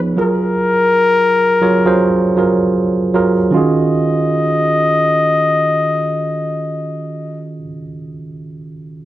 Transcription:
Already playing: tine electric piano F3 B3 D#4 G#4 C#5
0.17 tine electric piano F#3 F4 G#4 A#4
0.21 flugelhorn A#4
1.61 tine electric piano F#3 F4 G#4 C#5
1.85 tine electric piano F#3 F4 G#4 C5
2.37 tine electric piano F#3 F4 G#4 A#4
3.14 tine electric piano F#3 F4 G#4 A#4
3.51 tine electric piano D#3 C#4 F4
3.56 tine electric piano F#4 G#4, flugelhorn D#5

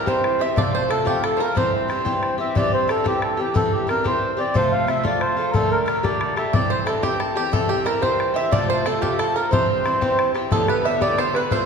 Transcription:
0.06 bouzouki G2 E3 C4 G4, accordion C5, five-string banjo C5, bodhran
0.24 bodhran
0.39 bouzouki E3 C4 G4, accordion E5, five-string banjo E5
0.56 bouzouki C3 F3 A3 F4, accordion D5, five-string banjo D5, bodhran
0.65 bodhran
0.72 accordion C5, five-string banjo C5, bodhran
0.89 bouzouki C3 F3 A3 F4, accordion A4, five-string banjo A4, bodhran
1.05 bouzouki C3 F3 A3 F4, accordion G4, five-string banjo G4, bodhran
1.24 accordion A4, five-string banjo A4, bodhran
1.37 bouzouki A3 F4, five-string banjo A#4 C5, accordion A#4
1.41 bouzouki F3
1.55 bouzouki G2 E3 C4 G4, accordion C5, five-string banjo C5, bodhran
1.65 bodhran
1.73 bodhran
1.88 bouzouki G2 E3 C4 G4, bodhran
2.05 bouzouki G2 E3 C4 G4, bodhran
2.23 bodhran
2.38 bouzouki E3 C4 G4, accordion E5
2.55 bouzouki G2 E3 C4 G4, accordion D5, bodhran
2.64 bodhran
2.73 accordion C5, bodhran
2.88 bouzouki G2 E3 C4 G4, accordion A4, bodhran
3.04 bouzouki G2 E3 C4 G4, accordion G4, bodhran
3.22 accordion A4, bodhran
3.37 bouzouki E3 C4 G4, accordion G4
3.54 bouzouki G2 E3 C4 G4, accordion A4, bodhran
3.64 bodhran
3.72 accordion G4, bodhran
3.87 bouzouki G2 E3 C4 G4, accordion A#4, bodhran
4.04 bouzouki G2 E3 C4 G4, accordion C5, bodhran
4.37 bouzouki E3 C4 G4, accordion D5
4.54 bouzouki C3 F3 A3 F4, accordion C5, bodhran
4.64 bodhran
4.72 accordion F5, bodhran
4.87 bouzouki C3 F3 A3 F4, accordion E5, bodhran
5.04 bouzouki C3 F3 A3 F4, accordion D5, bodhran
5.21 accordion C5, bodhran
5.37 bouzouki F3 A3 F4
5.51 bouzouki A#2 D3, accordion A4 A#4, bodhran
5.55 bouzouki A3 G4
5.63 bodhran
5.71 accordion A#4, bodhran
5.86 bouzouki A#2 D3 A3 G4, bodhran
6.03 bouzouki A#2 D3 A3 G4, accordion D5, bodhran
6.21 bodhran
6.36 bouzouki D3 A3 G4, accordion E5, bodhran
6.53 bouzouki G2 E3 C4 G4, five-string banjo D5, accordion D5, bodhran
6.62 bodhran
6.70 five-string banjo C5, accordion C5, bodhran
6.86 bouzouki G2 E3 C4 G4, five-string banjo A4, accordion A4, bodhran
7.02 bouzouki G2 E3 C4 G4, five-string banjo G4, accordion G4, bodhran
7.20 five-string banjo A4, accordion A4, bodhran
7.35 bouzouki E3 C4 G4, accordion G4, five-string banjo G4
7.52 bouzouki G2 E3 C4 G4, accordion A4, five-string banjo A4, bodhran
7.61 bodhran
7.69 five-string banjo G4, accordion G4, bodhran
7.84 bouzouki G2 E3 C4 G4, five-string banjo A#4, accordion A#4, bodhran
8.01 bouzouki G2 E3 C4 G4, accordion C5, five-string banjo C5, bodhran
8.20 bodhran
8.34 bouzouki E3 C4 G4, accordion E5, five-string banjo E5
8.51 bouzouki C3 F3 A3 F4, accordion D5, five-string banjo D5, bodhran
8.61 bodhran
8.69 accordion C5, five-string banjo C5
8.85 bouzouki C3 F3 A3 F4, accordion A4, five-string banjo A4, bodhran
9.01 bouzouki C3 F3 A3 F4, accordion G4, five-string banjo G4, bodhran
9.18 accordion A4, five-string banjo A4, bodhran
9.34 bouzouki F3 A3 F4, accordion A#4, five-string banjo A#4
9.51 bouzouki G2 E3 C4 G4, accordion C5, five-string banjo C5, bodhran
9.70 bodhran
9.84 bouzouki G2 E3 C4 G4, bodhran
10.01 bouzouki G2 E3 C4 G4, bodhran
10.19 bodhran
10.34 bouzouki E3 C4 G4, bodhran
10.51 bouzouki A2 D3 B3 G4, accordion A4, five-string banjo A4, bodhran
10.67 bouzouki D3 B3 G4, accordion B4, five-string banjo B4, bodhran
10.84 bouzouki A2 D3 B3 G4, accordion E5, five-string banjo E5
11.01 bouzouki A2 D3 B3 G4, accordion D5, five-string banjo D5, bodhran
11.17 bouzouki A2 D3 B3 G4, accordion C5, five-string banjo C5, bodhran
11.34 bouzouki D3 B3 G4, accordion B4, five-string banjo B4, bodhran
11.51 bouzouki A2 F3 C4 F4, accordion C5, five-string banjo C5, bodhran

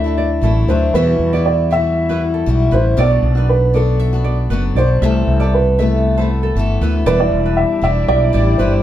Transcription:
Already playing: fretless electric bass D2, upright piano A4, nylon-string guitar E5
0.04 steel-string acoustic guitar A3 D4 E4
0.18 nylon-string guitar D5
0.41 fretless electric bass A1, steel-string acoustic guitar F#3 A3 D4 E4, nylon-string guitar A4
0.67 fretless electric bass D2, steel-string acoustic guitar F#3 A3 D4 E4, nylon-string guitar B4, upright piano C5
0.94 fretless electric bass E2, steel-string acoustic guitar E2 B2 E3 G3 E4 F#4, upright piano B4, nylon-string guitar E5
1.19 fretless electric bass E2
1.33 steel-string acoustic guitar E3 G3 E4 F#4, nylon-string guitar D5
1.46 upright piano D5
1.71 steel-string acoustic guitar E3 G3 E4 F#4, nylon-string guitar E5, upright piano E5
2.09 steel-string acoustic guitar E3 G3 E4 F#4, nylon-string guitar B4
2.34 nylon-string guitar A4
2.46 fretless electric bass B1, steel-string acoustic guitar E3 G3 E4 F#4
2.71 fretless electric bass A1, steel-string acoustic guitar E3 G3 E4 F#4, nylon-string guitar B4, upright piano C5
2.97 fretless electric bass B1, steel-string acoustic guitar B2 F#3 B3 D4 F#4, nylon-string guitar D5, upright piano D5
3.23 fretless electric bass B1
3.35 steel-string acoustic guitar B3 D4 F#4, nylon-string guitar B4
3.49 upright piano B4
3.74 steel-string acoustic guitar F#3 B3 D4 F#4, upright piano A4, nylon-string guitar D5
4.00 nylon-string guitar E5
4.13 steel-string acoustic guitar B3 D4 F#4
4.24 nylon-string guitar D5
4.50 fretless electric bass F#1, steel-string acoustic guitar F#3 B3 D4 F#4, nylon-string guitar B4
4.75 fretless electric bass B1, steel-string acoustic guitar F#3 B3 D4, upright piano C5, nylon-string guitar D5
4.80 steel-string acoustic guitar F#4
5.02 fretless electric bass C2, steel-string acoustic guitar C3 E3 A3 A4, nylon-string guitar E5
5.27 fretless electric bass C2
5.40 steel-string acoustic guitar B3 A4, nylon-string guitar D5
5.44 steel-string acoustic guitar A3
5.54 upright piano B4
5.79 steel-string acoustic guitar E3 A3 B3 A4, upright piano A4, nylon-string guitar E5
6.17 steel-string acoustic guitar A3 B3 A4, nylon-string guitar C5
6.43 nylon-string guitar A4
6.55 fretless electric bass G1, steel-string acoustic guitar E3 A3 B3
6.59 steel-string acoustic guitar A4
6.81 fretless electric bass D2, steel-string acoustic guitar E3 A3 B3 A4, nylon-string guitar B4
7.06 fretless electric bass E1, steel-string acoustic guitar E2 B2 E3 G3 D4 E4, ambient pad G3 E4 G4 D5, upright piano B4, nylon-string guitar D5
7.20 upright piano D5
7.32 fretless electric bass E1
7.46 nylon-string guitar B4
7.57 upright piano E5
7.82 fretless electric bass E1, steel-string acoustic guitar E3 G3 D4 E4, nylon-string guitar D5, upright piano E5
8.08 fretless electric bass B1, upright piano D5, nylon-string guitar E5
8.33 fretless electric bass A1, steel-string acoustic guitar E3 G3 D4 E4, nylon-string guitar D5
8.58 fretless electric bass G1, steel-string acoustic guitar E3 G3 D4 E4, nylon-string guitar B4, upright piano C5

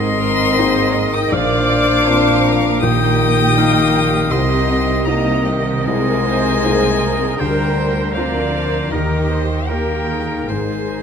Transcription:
Already playing: double bass section G#1, felt piano G#2, cello section G#2, harp G#2 A#3 A#4, french horn section C4, viola section G#4, violin section A#4 D#5, clarinet A#4, oboe D#5, violin C6
0.09 harp D#4
0.21 viola section A#4
0.58 felt piano A#3 D#4 G#4, viola section C5
0.82 harp D#3
0.95 viola section D#5
1.07 harp D#4
1.13 french horn section D#4, violin section G5, violin D#6
1.32 felt piano A#1, double bass section A#1, harp A#2, cello section A#2, french horn section D4, clarinet C5, violin section C5 F5, viola section D5, oboe F5, violin D6
1.82 harp A#3
2.07 felt piano A#3 C4 F4, harp C4, viola section C5
2.33 harp F3
2.46 viola section A#4
2.80 felt piano A#1, harp A#2, french horn section D#3, viola section G4, violin section G4 G5, clarinet A#4, oboe G5, violin D#6
3.07 harp D#4
3.32 harp D4
3.58 felt piano A#3 D#4 G4, harp D#4, oboe F5
4.07 harp D#4
4.31 felt piano C2, double bass section C2, harp C3, cello section C3, french horn section C4, clarinet A#4, violin section A#4 D#5, oboe D#5, violin C6
4.83 harp D4
5.05 felt piano A#3 D#4 G4, french horn section A#3, harp D#4, clarinet A#4, violin section D#5, oboe D#5, violin A#5
5.34 harp G3
5.45 french horn section D#3, violin section G4, violin D#5
5.61 harp D#4
5.84 felt piano C2, harp C3, french horn section G#3, viola section G#4, clarinet A#4, violin section C5, oboe D#5, violin G#5
6.25 viola section C5
6.39 harp C4
6.63 felt piano A#3 D#4 G#4, harp D#4, viola section G#4
6.90 harp G#3
7.15 harp D#4
7.38 double bass section D2, felt piano D2, cello section D3, french horn section G3, harp D4, viola section A#4, violin section A#4, clarinet A#4, oboe C5, violin G5
7.64 harp F4
7.78 viola section C5
7.89 harp C4
8.14 french horn section F3, felt piano C4 F4, violin section A#4, clarinet A#4, oboe C5, viola section D5, violin F5
8.18 felt piano A#4
8.40 harp A#3
8.67 harp F4
8.91 double bass section D#2, felt piano D#2, harp D#3, french horn section D#3, cello section D#3, violin section G4, clarinet G4, oboe A#4, viola section A#4, violin D#5
9.17 harp G5
9.31 viola section C5
9.43 harp F4
9.68 felt piano A#3 A#4 G5, french horn section A#3, clarinet G4, oboe A#4, viola section A#4, violin section A#4, violin G5
9.95 harp D#4
10.10 clarinet G#4
10.49 double bass section G#1, harp G#2, cello section G#2, felt piano G#2, french horn section G#3, viola section G#4, clarinet A#4, violin section A#4 C5, oboe C5, violin G#5
10.77 harp G#4

